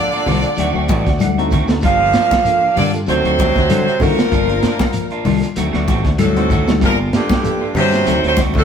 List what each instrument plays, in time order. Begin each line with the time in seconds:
Already playing: baritone saxophone D3, clean electric guitar F3, tenor saxophone A#3, horn section D5
0.12 clean electric guitar A#3 D4 F4, closed hi-hat
0.26 fingered electric bass C2, clean electric guitar F3 G3 A#3 D4 F4, tine electric piano C5, open hi-hat, high conga, low conga, claves, shekere
0.42 tine electric piano D5, closed hi-hat, shekere
0.56 fingered electric bass D2, clean electric guitar D#3 F#3 A3 C4 F#4, closed hi-hat, shekere
0.60 tine electric piano F#5
0.74 fingered electric bass D2, clean electric guitar F#3 A3 C4 F#4, claves
0.78 tine electric piano G5
0.88 fingered electric bass A1, clean electric guitar A3 C4 F#4, muted clean electric guitar stroke, kick, closed hi-hat, high conga, shekere
1.05 fingered electric bass D2, clean electric guitar D3, tine electric piano F#5, kick, snare, closed hi-hat, shekere
1.19 clean electric guitar F#3, closed hi-hat, high conga, claves, shekere
1.23 tine electric piano F#4 A4 F#5
1.38 clean electric guitar A3 C4 F#4, tine electric piano C4 D#4 F#4 A4 A#5, closed hi-hat
1.51 clean electric guitar D#3 A3 C4 F#4, kick, closed hi-hat, low conga, shekere
1.68 tine electric piano C4 D#4 F#4 A4, snare, shekere
1.81 fingered electric bass G1, clean electric guitar G3 A#3 D4 F4, kick, closed hi-hat, claves, shekere
1.85 baritone saxophone F3, tenor saxophone A#3, horn section F5
2.01 clean electric guitar D4 F4
2.13 clean electric guitar A#3 D4 F4, snare, closed hi-hat, shekere
2.31 kick, snare, high conga, claves, shekere
2.44 clean electric guitar F3, tine electric piano A#3 D4 F4 A4, closed hi-hat, shekere
2.63 clean electric guitar D4, muted clean electric guitar stroke
2.76 fingered electric bass G2, baritone saxophone D3, clean electric guitar G3 A#3 D4 F4, tenor saxophone A#3, horn section D5, open hi-hat, high conga, low conga, claves, shekere
2.93 tine electric piano F4 A4, closed hi-hat, shekere
3.06 fingered electric bass D2, baritone saxophone C3, clean electric guitar D#3 F#3 C4 F#4, tenor saxophone F#3, tine electric piano C4 D#4 F#4 A4, horn section C5, muted clean electric guitar stroke, closed hi-hat, shekere
3.24 fingered electric bass D2, clean electric guitar F#3 A3 C4 F#4, closed hi-hat, claves
3.39 clean electric guitar D#3 A3 C4 F#4, kick, snare, closed hi-hat, high conga, shekere
3.55 fingered electric bass D2, clean electric guitar D3, kick, snare, low conga, shekere
3.69 fingered electric bass D3, clean electric guitar F#3, closed hi-hat, high conga, claves, shekere
3.87 clean electric guitar A3 C4 F#4, closed hi-hat
4.00 baritone saxophone A#2, fingered electric bass D3, tenor saxophone F3, clean electric guitar A3 C4 F#4, tine electric piano C4 D#4 F#4 A4, horn section A#4, kick, open hi-hat, high conga, low conga, shekere
4.19 snare, closed hi-hat, shekere
4.30 fingered electric bass G1, clean electric guitar F3 G3 A#3 D4 F4, tine electric piano A#3 D4 F4 A#4, kick, closed hi-hat, claves, shekere
4.49 clean electric guitar A#3 D4 F4, closed hi-hat
4.63 clean electric guitar F3 A#3 D4 F4, snare, closed hi-hat, shekere
4.79 kick, snare, high conga, claves, shekere
4.93 clean electric guitar F3, closed hi-hat, shekere
5.10 clean electric guitar A#3 D4 F4, closed hi-hat
5.25 fingered electric bass C2, clean electric guitar F3 G3 A#3 D4 F4, open hi-hat, high conga, low conga, claves, shekere
5.43 closed hi-hat, shekere
5.56 fingered electric bass D2, clean electric guitar D#3 F#3 A3 C4 F#4, closed hi-hat, shekere
5.73 fingered electric bass D2, clean electric guitar F#3 A3 C4 F#4, snare, claves
5.88 fingered electric bass A1, clean electric guitar D#3 A3 C4 F#4, kick, snare, closed hi-hat, high conga, shekere
6.05 fingered electric bass D2, clean electric guitar D3, kick, snare, closed hi-hat, shekere
6.17 baritone saxophone A2, clean electric guitar F#3, tine electric piano F#4 A4, horn section A4, closed hi-hat, high conga, claves, shekere
6.21 tenor saxophone F#3
6.36 clean electric guitar A3 C4 F#4, tine electric piano C4 D#4 F#4 C5, closed hi-hat, high conga
6.50 clean electric guitar D#3 A3 C4 F#4, kick, closed hi-hat, low conga, shekere
6.68 tine electric piano C4 D#4 F#4 A4, snare, high conga, shekere
6.80 fingered electric bass G1, tenor saxophone F3, clean electric guitar G3 A#3 D4 F4, kick, snare, closed hi-hat, claves, shekere
6.85 baritone saxophone A#2, horn section A#4
7.00 clean electric guitar D4 F4
7.13 baritone saxophone G2, tenor saxophone D3, clean electric guitar A#3 D4 F4, horn section G4, snare, closed hi-hat, shekere
7.29 kick, snare, high conga, claves, shekere
7.43 clean electric guitar F3, tine electric piano A#3 D4 F4 A4, closed hi-hat, shekere
7.61 clean electric guitar D4 F4
7.75 fingered electric bass G2, baritone saxophone C3, tenor saxophone F#3, clean electric guitar A#3 D4 F4, open hi-hat, high conga, low conga, claves, shekere
7.79 horn section C5
7.91 tine electric piano F4 A4, snare, closed hi-hat, shekere
8.05 fingered electric bass D2, clean electric guitar D#3 F#3 A3 C4 F#4, tine electric piano C4 D#4 F#4 A4, closed hi-hat, shekere
8.23 fingered electric bass D2, tenor saxophone F#3, clean electric guitar A3 C4 F#4, closed hi-hat, claves
8.28 baritone saxophone C3, horn section C5
8.37 clean electric guitar D#3 A3 C4 F#4, kick, snare, closed hi-hat, high conga, shekere
8.54 fingered electric bass D2, clean electric guitar D3, tenor saxophone F3, kick, snare, low conga, shekere
8.58 baritone saxophone A2, horn section A4